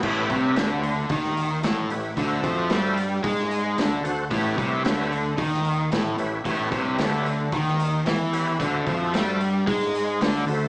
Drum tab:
CC |x---------------|----------------|----------------|----------------|
HH |--o-o-o-o-o-o-o-|o-o-o-o-o-o-o-o-|o-o-o-o-o-o-o-o-|o-o-o-o-o-o-o-o-|
SD |----o----o--o---|----o----o--o---|----o----o--o---|----o----o--o---|
BD |o-o-----o-------|o-o-----o-------|o-o-----o-------|o-o-----o-------|

CC |----------------|
HH |o-o-o-o-o-o-o-o-|
SD |----o----o--o---|
BD |o-o-----o-------|